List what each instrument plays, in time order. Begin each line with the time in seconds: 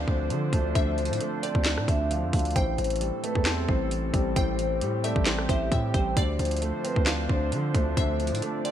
Already playing: felt piano D3 F3 A3 C4 D4, ambient pad F3 D4 C5, synth pluck F5
0.08 808-style bass D2, felt piano D3, vibraphone C5, kick
0.30 808-style bass D3, felt piano F3, closed hi-hat
0.53 808-style bass D2, felt piano A3, kick, closed hi-hat
0.75 808-style bass D2, felt piano D3, vibraphone C5, synth pluck E5, kick, closed hi-hat
0.98 felt piano F3, closed hi-hat
1.05 closed hi-hat
1.10 808-style bass A2, closed hi-hat
1.20 felt piano A3, closed hi-hat
1.43 felt piano C4, vibraphone D5, synth pluck D5, closed hi-hat
1.55 808-style bass D2, kick
1.65 felt piano D4, snare, clap, closed hi-hat
1.78 808-style bass A2, cross-stick
1.88 808-style bass D2, felt piano D3, vibraphone E5, kick, closed hi-hat
2.11 felt piano F3, vibraphone F5, closed hi-hat
2.23 808-style bass F2
2.33 808-style bass D2, felt piano A3, kick, closed hi-hat, open hi-hat
2.39 closed hi-hat
2.45 closed hi-hat
2.51 closed hi-hat
2.56 808-style bass A1, felt piano A2, ambient pad G3 C4 A4, vibraphone C5, synth pluck G5, kick, closed hi-hat
2.78 808-style bass A1, felt piano E3, closed hi-hat
2.84 closed hi-hat
2.90 closed hi-hat
2.96 closed hi-hat
3.01 felt piano G3, closed hi-hat
3.23 felt piano A3, vibraphone B4, closed hi-hat
3.35 808-style bass E2, kick
3.45 felt piano C4, synth pluck A5, snare, clap, closed hi-hat
3.68 808-style bass A1, felt piano A2, vibraphone C5, kick
3.91 felt piano E3, closed hi-hat
4.13 808-style bass A1, felt piano G3, kick, closed hi-hat
4.36 808-style bass A1, felt piano A2, ambient pad G4, vibraphone C5, synth pluck G5, kick, closed hi-hat
4.59 felt piano E3, closed hi-hat
4.81 808-style bass A2, felt piano G3, closed hi-hat
5.04 felt piano A3, vibraphone D5, synth pluck E5, closed hi-hat
5.16 808-style bass A1, kick
5.26 felt piano C4, synth pluck D5, snare, clap, closed hi-hat
5.38 cross-stick
5.49 808-style bass A1, felt piano A2, synth pluck C5, vibraphone E5, kick, closed hi-hat
5.72 808-style bass A2, felt piano E3, synth pluck E5, vibraphone G5, kick, closed hi-hat
5.94 808-style bass A1, felt piano G3, synth pluck C5, kick, closed hi-hat
6.17 808-style bass D2, felt piano D3, ambient pad F3 D4 C5, vibraphone C5, synth pluck D5, kick, closed hi-hat
6.39 808-style bass D2, felt piano F3, closed hi-hat
6.45 closed hi-hat
6.51 closed hi-hat
6.57 closed hi-hat
6.62 felt piano A3, closed hi-hat
6.84 felt piano C4, vibraphone B4, closed hi-hat
6.96 808-style bass D2, kick
7.06 felt piano D4, synth pluck F5, snare, clap, closed hi-hat
7.29 808-style bass D2, felt piano D3, vibraphone C5, kick
7.52 808-style bass D3, felt piano F3, closed hi-hat
7.74 808-style bass D2, felt piano A3, kick, closed hi-hat
7.97 808-style bass D2, felt piano D3, vibraphone C5, ambient pad D5, synth pluck E5, kick, closed hi-hat
8.20 felt piano F3, closed hi-hat
8.27 closed hi-hat
8.32 808-style bass A2, closed hi-hat
8.42 felt piano A3, closed hi-hat
8.65 felt piano C4, vibraphone D5, synth pluck D5, closed hi-hat